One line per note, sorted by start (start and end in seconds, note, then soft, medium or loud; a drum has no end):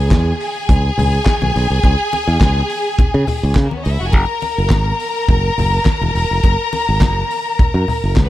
0.00 0.11 C#2 medium
0.00 3.53 G#4 loud
0.00 3.53 G#5 loud
0.11 0.31 E2 medium
0.11 kick loud
0.11 snare loud
0.11 clap medium
0.11 closed hi-hat medium
0.11 high conga medium
0.40 open hi-hat medium
0.69 0.89 C#2 medium
0.69 kick loud
0.69 closed hi-hat medium
0.69 muted conga soft
0.69 low conga medium
0.98 1.18 C#2 medium
0.98 open hi-hat medium
0.98 low conga medium
1.26 kick loud
1.26 snare loud
1.26 clap medium
1.26 closed hi-hat medium
1.26 high conga medium
1.42 1.51 B1 medium
1.42 high conga medium
1.56 1.66 B1 medium
1.56 open hi-hat medium
1.70 1.80 C2 medium
1.83 1.94 C#2 medium
1.83 kick medium
1.83 closed hi-hat medium
1.83 muted conga medium
2.12 open hi-hat medium
2.12 muted conga medium
2.28 2.37 E2 medium
2.41 2.61 C#2 loud
2.41 kick loud
2.41 snare loud
2.41 clap medium
2.41 closed hi-hat medium
2.41 high conga medium
2.57 snare soft
2.69 open hi-hat medium
2.98 muted fingered electric bass stroke soft
2.98 kick loud
2.98 closed hi-hat medium
2.98 muted conga soft
2.98 low conga medium
3.14 3.24 C#3 medium
3.27 open hi-hat medium
3.27 low conga medium
3.43 3.52 C#2 loud
3.54 3.67 C#3 loud
3.54 kick loud
3.54 snare loud
3.54 clap medium
3.54 closed hi-hat medium
3.54 high conga medium
3.64 3.72 A#3 soft
3.64 3.72 A#4 medium
3.71 3.78 B3 medium
3.71 3.78 B4 medium
3.71 high conga medium
3.78 3.85 C#4 medium
3.78 3.85 C#5 medium
3.84 3.96 C#2 loud
3.84 3.92 D#4 medium
3.84 3.92 D#5 medium
3.84 open hi-hat medium
3.91 3.99 E4 medium
3.91 3.99 E5 medium
4.00 4.14 F1 medium
4.00 4.07 F#4 medium
4.00 4.07 F#5 medium
4.06 4.13 G#4 medium
4.06 4.13 G#5 medium
4.12 4.24 F#1 medium
4.12 8.14 A#4 medium
4.12 8.14 A#5 loud
4.12 kick medium
4.12 closed hi-hat medium
4.12 muted conga medium
4.41 open hi-hat medium
4.41 muted conga medium
4.58 4.71 F#1 medium
4.70 4.91 G#1 medium
4.70 kick loud
4.70 snare loud
4.70 clap medium
4.70 closed hi-hat medium
4.70 high conga medium
5.00 open hi-hat medium
5.28 5.49 F#1 loud
5.28 kick loud
5.28 closed hi-hat medium
5.28 low conga medium
5.58 5.78 F#1 medium
5.58 open hi-hat medium
5.58 low conga medium
5.85 kick loud
5.85 snare loud
5.85 clap medium
5.85 closed hi-hat medium
5.85 high conga medium
6.01 6.11 E1 medium
6.01 high conga medium
6.15 6.26 E1 medium
6.15 open hi-hat medium
6.31 6.40 F1 medium
6.43 6.54 F#1 medium
6.43 kick medium
6.43 closed hi-hat medium
6.43 muted conga medium
6.72 open hi-hat medium
6.72 muted conga medium
6.89 7.01 G#1 loud
7.01 7.21 F#1 medium
7.01 kick loud
7.01 snare loud
7.01 clap medium
7.01 closed hi-hat medium
7.01 high conga medium
7.31 open hi-hat medium
7.59 muted fingered electric bass stroke soft
7.59 kick loud
7.59 closed hi-hat medium
7.59 muted conga soft
7.59 low conga medium
7.74 7.84 F#2 medium
7.88 open hi-hat medium
7.88 low conga medium
8.04 8.13 F#1 medium
8.15 8.27 C#2 medium
8.15 kick loud
8.15 snare loud
8.15 clap medium
8.15 closed hi-hat medium
8.15 high conga medium
8.24 8.29 B3 medium
8.24 8.29 B4 medium